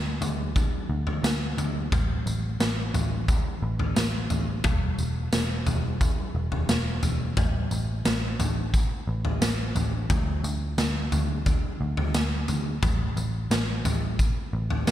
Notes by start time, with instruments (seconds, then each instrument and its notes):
Already playing: picked electric bass D2
0.21 picked electric bass D2, floor tom, tambourine
0.56 kick, floor tom, tambourine
0.90 picked electric bass D2
1.07 floor tom
1.23 picked electric bass D2, snare, tambourine
1.58 picked electric bass D2, floor tom, tambourine
1.92 picked electric bass A1, kick, floor tom, tambourine
2.26 picked electric bass A1, tambourine
2.60 picked electric bass A1, snare, tambourine
2.94 picked electric bass A1, floor tom, tambourine
3.28 kick, floor tom, tambourine
3.62 picked electric bass A1
3.79 floor tom
3.96 picked electric bass A1, snare, tambourine
4.30 picked electric bass A1, floor tom, tambourine
4.64 picked electric bass E1, kick, floor tom, tambourine
4.98 picked electric bass E1, tambourine
5.33 picked electric bass E1, snare, tambourine
5.66 picked electric bass E1, floor tom, tambourine
6.01 kick, floor tom, tambourine
6.35 picked electric bass E1
6.52 floor tom
6.69 picked electric bass E1, snare, tambourine
7.03 picked electric bass E1, floor tom, tambourine
7.37 picked electric bass A1, kick, floor tom, tambourine
7.71 picked electric bass A1, tambourine
8.05 picked electric bass A1, snare, tambourine
8.39 picked electric bass A1, floor tom, tambourine
8.74 kick, tambourine
9.07 picked electric bass A1
9.25 floor tom
9.41 picked electric bass A1, snare, tambourine
9.75 picked electric bass A1, floor tom, tambourine
10.10 picked electric bass D2, kick, floor tom, tambourine
10.44 picked electric bass D2, tambourine
10.78 picked electric bass D2, snare, tambourine
11.12 picked electric bass D2, floor tom, tambourine
11.46 kick, floor tom, tambourine
11.81 picked electric bass D2
11.97 floor tom
12.14 picked electric bass D2, snare, tambourine
12.48 picked electric bass D2, floor tom, tambourine
12.83 picked electric bass A1, kick, floor tom, tambourine
13.17 picked electric bass A1, tambourine
13.51 picked electric bass A1, snare, tambourine
13.85 picked electric bass A1, floor tom, tambourine
14.19 kick, tambourine
14.53 picked electric bass A1
14.70 floor tom
14.87 picked electric bass A1, snare, tambourine